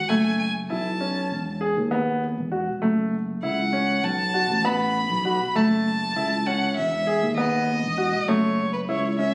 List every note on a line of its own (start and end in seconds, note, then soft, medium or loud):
0.09 0.67 F#1 medium
0.09 0.41 A3 medium
0.09 0.39 G#5 medium
0.39 0.53 G#5 medium
0.70 1.28 B1 medium
0.70 0.86 E4 medium
0.70 1.57 A5 medium
1.00 1.32 C#4 medium
1.32 1.74 E1 medium
1.61 1.77 G#4 medium
1.77 2.34 D#2 medium
1.91 2.23 B3 medium
2.38 2.66 E1 medium
2.52 2.67 F#4 medium
2.82 3.40 F#1 medium
2.82 3.13 A3 medium
3.43 4.01 C#2 medium
3.43 3.59 E4 medium
3.43 4.06 F#5 medium
3.73 4.04 C#4 medium
4.04 4.47 B1 medium
4.04 4.66 A5 medium
4.34 4.50 F#4 medium
4.50 5.07 A1 medium
4.64 4.96 B3 medium
4.64 5.57 B5 medium
5.10 5.39 B1 medium
5.25 5.41 F#4 medium
5.55 6.13 F#1 medium
5.55 5.87 A3 medium
5.55 6.48 A5 medium
6.16 6.74 C#2 medium
6.16 6.32 E4 medium
6.46 6.78 C#4 medium
6.46 6.76 F#5 medium
6.76 7.20 E1 medium
6.76 7.33 E5 medium
7.07 7.23 G#4 medium
7.23 7.80 D#2 medium
7.37 7.69 B3 medium
7.37 8.30 D#5 medium
7.83 8.12 E1 medium
7.98 8.14 F#4 medium
8.28 8.86 F#1 medium
8.28 8.60 A3 medium
8.28 8.73 C#5 medium
8.73 8.80 B4 medium
8.88 9.34 C#2 medium
8.88 9.05 E4 medium
8.88 9.17 C#5 medium
9.19 9.34 C#4 medium
9.19 9.34 E5 medium